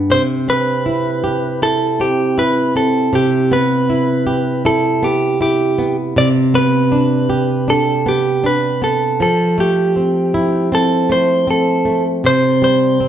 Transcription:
Already playing: G2 B3 D4
0.10 C3 C5
0.48 C4 B4
0.86 E4
1.24 G4
1.62 E4 A4
2.00 C4 G4
2.38 E4 B4
2.76 C4 A4
3.13 C3 G4
3.51 B3 B4
3.90 E4
4.27 G4
4.65 E4 A4
5.03 B3 G4
5.41 E4 G4
5.78 B3
6.16 C3 D5
6.54 B3 B4
6.92 D4
7.30 G4
7.68 D4 A4
8.06 B3 G4
8.44 D4 B4
8.82 B3 A4
9.20 F3 A4
9.58 A3 G4
9.96 C4
10.34 E4
10.72 C4 A4
11.09 A3 C5
11.47 C4 A4
11.85 A3
12.24 C3 C5
12.62 G3 C5
13.00 C4

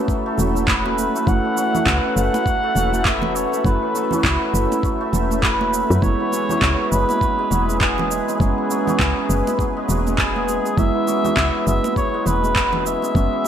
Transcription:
Already playing: E3 A3 B3 C#4 E4 F#4 A4 E5
0.08 F#3, kick, shaker
0.26 A3
0.38 E1 F#3, high conga, low conga, shaker
0.55 A3, high conga, shaker
0.68 B3 B4, kick, clap, shaker
0.85 C#4, high conga
0.98 A3, shaker
1.15 A3, shaker
1.26 F#1 F#3 A3 C#4 E4 F#5, kick, shaker
1.45 E3
1.57 F#3, muted conga, shaker
1.72 F#3 A3 C#4 E4, low conga, shaker
1.86 C#2 B3, kick, clap, shaker
2.04 C#4
2.16 F#1 A3 F#5, shaker
2.33 E4, muted conga, high conga, shaker
2.46 F#3, kick, shaker
2.63 A3
2.75 E1 F#3, high conga, low conga, shaker
2.93 A3, high conga, shaker
3.05 B3 E5, kick, clap, shaker
3.22 C#4, muted conga, high conga, low conga
3.35 A3 C#5, shaker
3.52 A3, muted conga, shaker
3.64 F#1 F#3 A3 C#4 E4 B4, kick, shaker
3.82 E3
3.94 F#3, muted conga, high conga, shaker
4.10 F#3 A3 C#4 E4, low conga, shaker
4.24 C#2 B3 B4, kick, clap, shaker
4.42 C#4
4.54 F#1 A3, shaker
4.71 E4, muted conga, high conga, shaker
4.83 F#3, kick, shaker
5.01 A3
5.13 E1 F#3, high conga, low conga, shaker
5.31 A3, high conga, shaker
5.43 B3 B4, kick, clap, shaker
5.60 C#4, high conga
5.73 A3, shaker
5.90 F#2 A3, shaker
6.02 F#1 F#3 G#3 B3 E4 G#4 B4 C#5, kick, shaker
6.20 E3
6.32 F#3, muted conga, shaker
6.48 F#3 G#3 B3 E4, low conga, shaker
6.62 C#2, kick, clap, shaker
6.79 C#4
6.91 F#1 G#3 B4, shaker
7.09 E4, muted conga, high conga, shaker
7.21 F#3, kick, shaker
7.39 G#3
7.51 E1 F#3, high conga, low conga, shaker
7.69 G#3, high conga, shaker
7.80 B3 G#4, kick, clap, shaker
7.98 C#4, muted conga, high conga, low conga
8.10 G#3, shaker
8.28 G#3, muted conga, shaker
8.39 F#1 F#3 G#3 B3 C#4 G#4, kick, shaker
8.58 E3
8.70 F#3, high conga, shaker
8.85 F#3 G#3 B3, low conga, shaker
8.89 C#4
8.99 C#2 B3, kick, clap, shaker
9.17 C#4
9.29 F#1 G#3, shaker
9.47 E4, muted conga, high conga, shaker
9.59 F#3, kick, shaker
9.77 G#3
9.88 E1 F#3, high conga, low conga, shaker
10.06 G#3, high conga, shaker
10.18 B3 G#4, kick, clap, shaker
10.35 C#4, high conga
10.48 G#3, shaker
10.65 G#3, shaker
10.77 F#1 F#3 G#3 B3 E4 E5, kick, shaker
10.95 E3
11.07 F#3, muted conga, shaker
11.23 F#3 G#3 B3 E4, low conga, shaker
11.37 C#2 B3, kick, clap, shaker
11.54 C#4
11.67 F#1 G#3 E5, shaker
11.84 E4, muted conga, high conga, shaker
11.96 F#3 C#5, kick, shaker
12.14 G#3
12.26 E1 F#3 B4, high conga, low conga, shaker
12.44 G#3, high conga, shaker
12.56 B3, kick, clap, shaker
12.72 C#4, muted conga, high conga, low conga
12.86 G#3 E5, shaker
13.02 G#3, muted conga, shaker
13.14 F#1 F#3 G#3 B3 C#4, kick, shaker
13.33 E3
13.44 muted conga, high conga

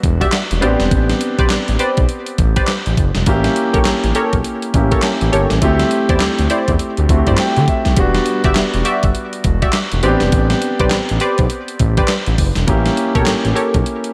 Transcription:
Already playing: G3 B3 D4 F#4
0.03 E1, kick, closed hi-hat
0.21 F#4 G4 D5 E5, kick, closed hi-hat
0.32 snare, clap, closed hi-hat
0.51 E1, closed hi-hat
0.61 A1 B3 C4 D4 G4 B4 C5 D5, closed hi-hat
0.80 E1, snare, closed hi-hat
0.91 A1, kick, closed hi-hat
1.10 snare, closed hi-hat
1.21 closed hi-hat
1.39 B1 G4 B4 C5 D5, kick, closed hi-hat
1.50 A1, snare, clap, closed hi-hat
1.68 A1, closed hi-hat
1.79 G4 B4 C5 D5, closed hi-hat
1.97 B1, kick, closed hi-hat
2.09 closed hi-hat
2.26 closed hi-hat
2.38 A1, kick, closed hi-hat
2.56 G4 B4 C5 D5, kick, closed hi-hat
2.68 snare, clap, closed hi-hat
2.86 A1, closed hi-hat
2.97 F#1, kick, closed hi-hat
3.15 E1, snare, closed hi-hat
3.26 A1 A#3 C#4 E4 G4, kick, closed hi-hat
3.44 snare, closed hi-hat
3.56 closed hi-hat
3.73 B1 G4 A4 A#4 C#5, kick, closed hi-hat
3.85 A1, snare, clap, closed hi-hat
4.04 A1, closed hi-hat
4.15 G4 A4 A#4 C#5, closed hi-hat
4.33 B1, kick, closed hi-hat
4.44 closed hi-hat
4.62 closed hi-hat
4.74 A1 A#3 C#4 E4 G4, kick, closed hi-hat
4.91 G4 A4 A#4 C#5, kick, closed hi-hat
5.02 snare, clap, closed hi-hat
5.21 A1, closed hi-hat
5.32 G1 G4 A4 A#4 C#5, closed hi-hat
5.50 A1, snare, closed hi-hat
5.62 D2 A3 C4 E4 G4, kick, closed hi-hat
5.79 snare, closed hi-hat
5.91 closed hi-hat
6.09 E2 E4 G4 C5 D5, kick, closed hi-hat
6.20 D2, snare, clap, closed hi-hat
6.39 D2, closed hi-hat
6.50 E4 G4 C5 D5, closed hi-hat
6.68 E2, kick, closed hi-hat
6.79 closed hi-hat
6.97 D2, closed hi-hat
7.09 D2 A3 C4 E4 F#4, kick, closed hi-hat
7.17 G4
7.27 G2 E4 G4 C5 D5, kick, closed hi-hat
7.38 G5, snare, clap, closed hi-hat
7.56 D3, closed hi-hat
7.68 E5, kick, closed hi-hat
7.85 B1, snare, closed hi-hat
7.97 E1 G3 B3 D4 F#4, kick, closed hi-hat
8.15 snare, closed hi-hat
8.26 closed hi-hat
8.44 G1 F#4 G4 D5 E5, kick, closed hi-hat
8.55 E1, snare, clap, closed hi-hat
8.74 E1, closed hi-hat
8.85 F#4 G4 D5 E5, closed hi-hat
9.03 G1, kick, closed hi-hat
9.15 closed hi-hat
9.33 closed hi-hat
9.44 E1, kick, closed hi-hat
9.62 F#4 G4 D5 E5, kick, closed hi-hat
9.73 snare, clap, closed hi-hat
9.92 E1, closed hi-hat
10.03 A1 B3 C4 D4 G4 B4 C5 D5, closed hi-hat
10.20 E1, snare, closed hi-hat
10.32 A1, kick, closed hi-hat
10.50 snare, closed hi-hat
10.62 closed hi-hat
10.79 B1 G4 B4 C5 D5, kick, closed hi-hat
10.91 A1, snare, clap, closed hi-hat
11.09 A1, closed hi-hat
11.20 G4 B4 C5 D5, closed hi-hat
11.38 B1, kick, closed hi-hat
11.50 closed hi-hat
11.68 closed hi-hat
11.79 A1, kick, closed hi-hat
11.97 G4 B4 C5 D5, kick, closed hi-hat
12.08 snare, clap, closed hi-hat
12.26 A1, closed hi-hat
12.38 F#1, kick, open hi-hat
12.55 E1, snare, closed hi-hat
12.67 A1 A#3 C#4 E4 G4, kick, closed hi-hat
12.86 snare, closed hi-hat
12.97 closed hi-hat
13.15 B1 G4 A4 A#4 C#5, kick, closed hi-hat
13.26 A1, snare, clap, closed hi-hat
13.45 A1, closed hi-hat
13.55 G4 A4 A#4 C#5, closed hi-hat
13.74 B1, kick, closed hi-hat
13.86 closed hi-hat
14.04 closed hi-hat

